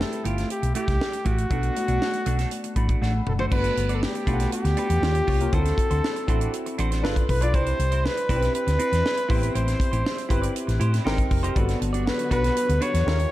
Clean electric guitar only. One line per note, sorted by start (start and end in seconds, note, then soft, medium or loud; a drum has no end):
0.00 muted clean electric guitar stroke soft
0.12 muted clean electric guitar stroke soft
0.24 0.38 A3 medium
0.24 0.37 E4 medium
0.24 0.36 G4 medium
0.37 0.49 A3 soft
0.37 0.50 E4 soft
0.37 0.50 G4 medium
0.50 muted clean electric guitar stroke soft
0.62 muted clean electric guitar stroke soft
0.75 0.88 A3 medium
0.75 0.87 E4 medium
0.75 0.86 G4 medium
0.87 0.98 A3 medium
0.87 0.99 E4 medium
0.87 1.00 G4 medium
1.00 muted clean electric guitar stroke soft
1.12 muted clean electric guitar stroke soft
1.25 1.44 A3 medium
1.25 1.38 E4 medium
1.25 1.36 G4 medium
1.38 muted clean electric guitar stroke soft
1.50 1.74 A3 medium
1.50 1.74 D4 medium
1.50 1.75 F#4 medium
1.75 muted clean electric guitar stroke soft
1.88 1.99 A3 soft
1.88 2.00 D4 medium
1.88 2.01 F#4 medium
2.01 muted clean electric guitar stroke soft
2.13 muted clean electric guitar stroke soft
2.26 2.39 A3 medium
2.26 2.38 D4 medium
2.26 2.38 F#4 medium
2.39 2.50 A3 soft
2.39 2.51 D4 soft
2.39 2.52 A4 medium
2.51 muted clean electric guitar stroke soft
2.64 muted clean electric guitar stroke soft
2.76 2.89 A3 medium
2.76 2.89 D4 medium
2.76 2.88 F#4 medium
2.89 3.00 A3 soft
2.89 3.01 D4 soft
2.89 3.02 F#4 medium
3.01 3.20 A3 medium
3.01 3.14 D4 medium
3.01 3.13 F#4 medium
3.14 muted clean electric guitar stroke soft
3.27 muted clean electric guitar stroke soft
3.39 3.55 A3 soft
3.39 3.50 D4 medium
3.39 3.51 F#4 medium
3.51 3.75 D4 medium
3.51 3.75 F#4 medium
3.51 3.76 B4 medium
3.77 muted clean electric guitar stroke soft
3.89 4.01 D4 medium
3.89 4.01 F#4 medium
3.89 4.02 D5 medium
4.02 muted clean electric guitar stroke soft
4.14 muted clean electric guitar stroke soft
4.27 4.40 D4 medium
4.27 4.39 F#4 medium
4.27 4.38 B4 medium
4.40 4.51 D4 soft
4.40 4.52 F#4 medium
4.40 4.52 B4 medium
4.52 muted clean electric guitar stroke soft
4.65 muted clean electric guitar stroke soft
4.77 4.90 D4 medium
4.77 4.90 F#4 medium
4.77 4.88 B4 medium
4.90 5.02 D4 soft
4.90 5.03 F#4 soft
4.90 5.03 B4 medium
5.15 muted clean electric guitar stroke soft
5.27 5.46 F4 medium
5.27 5.40 G4 medium
5.27 5.39 C#5 medium
5.40 muted clean electric guitar stroke soft
5.52 5.76 D4 medium
5.52 5.76 F#4 medium
5.52 5.77 C5 medium
5.78 muted clean electric guitar stroke soft
5.90 6.02 D4 medium
5.90 6.03 F#4 medium
5.90 6.04 C5 medium
6.04 muted clean electric guitar stroke soft
6.16 muted clean electric guitar stroke soft
6.28 6.42 D4 medium
6.28 6.41 F#4 medium
6.28 6.41 C5 medium
6.41 6.52 D4 soft
6.41 6.53 F#4 soft
6.41 6.54 D5 medium
6.54 muted clean electric guitar stroke soft
6.66 muted clean electric guitar stroke medium
6.78 6.91 D4 medium
6.78 6.91 F#4 medium
6.78 6.90 C5 medium
6.91 7.02 D4 soft
6.91 7.04 F#4 soft
6.91 7.05 C5 medium
7.04 7.23 D4 medium
7.04 7.16 F4 medium
7.04 7.15 B4 medium
7.16 muted clean electric guitar stroke soft
7.29 muted clean electric guitar stroke soft
7.41 7.53 D4 soft
7.41 7.54 F4 medium
7.41 7.54 B4 medium
7.54 7.77 C4 medium
7.54 7.77 E4 medium
7.54 7.78 B4 medium
7.79 muted clean electric guitar stroke soft
7.91 8.03 C4 medium
7.91 8.04 E4 medium
7.91 8.05 C5 medium
8.04 muted clean electric guitar stroke soft
8.17 muted clean electric guitar stroke soft
8.29 8.42 C4 medium
8.29 8.41 E4 medium
8.29 8.40 B4 medium
8.41 8.53 C4 soft
8.41 8.54 E4 medium
8.41 8.54 B4 medium
8.54 muted clean electric guitar stroke soft
8.67 muted clean electric guitar stroke soft
8.79 8.92 C4 medium
8.79 8.91 E4 medium
8.79 8.90 B4 medium
8.92 9.04 E4 medium
8.92 9.05 B4 medium
9.04 muted clean electric guitar stroke soft
9.17 muted clean electric guitar stroke soft
9.29 9.48 E4 medium
9.29 9.42 G4 medium
9.29 9.40 C5 medium
9.42 muted clean electric guitar stroke soft
9.54 9.78 E4 medium
9.54 9.78 G4 medium
9.54 9.79 C5 medium
9.79 muted clean electric guitar stroke soft
9.92 10.03 E4 soft
9.92 10.04 G4 soft
9.92 10.04 C5 medium
10.04 muted clean electric guitar stroke soft
10.17 muted clean electric guitar stroke soft
10.29 10.42 E4 medium
10.29 10.41 G4 medium
10.29 10.41 C5 medium
10.42 10.53 E4 soft
10.42 10.54 G4 medium
10.42 10.56 D5 medium
10.55 muted clean electric guitar stroke soft
10.67 muted clean electric guitar stroke soft
10.80 10.93 E4 medium
10.80 10.92 G4 medium
10.80 10.91 C5 medium
10.92 11.04 E4 medium
10.92 11.04 G4 soft
10.92 11.05 C5 medium
11.04 11.24 D#4 medium
11.04 11.17 G4 medium
11.04 11.16 C5 medium
11.18 muted clean electric guitar stroke soft
11.30 muted clean electric guitar stroke soft
11.43 11.55 D#4 medium
11.43 11.56 G4 medium
11.43 11.57 C5 medium
11.55 11.79 D4 medium
11.55 11.79 F#4 medium
11.55 11.80 B4 medium
11.80 muted clean electric guitar stroke soft
11.93 12.05 D4 medium
11.93 12.05 F#4 medium
11.93 12.06 D5 medium
12.06 muted clean electric guitar stroke soft
12.18 muted clean electric guitar stroke soft
12.31 12.44 D4 medium
12.31 12.43 F#4 medium
12.31 12.42 B4 medium
12.44 12.55 D4 soft
12.44 12.55 F#4 medium
12.44 12.56 B4 medium
12.56 muted clean electric guitar stroke soft
12.69 muted clean electric guitar stroke soft
12.81 12.94 D4 medium
12.81 12.93 F#4 medium
12.81 12.92 B4 medium
12.93 13.06 D4 soft
12.93 13.07 F#4 medium
12.93 13.07 B4 medium
13.06 muted clean electric guitar stroke soft
13.19 muted clean electric guitar stroke soft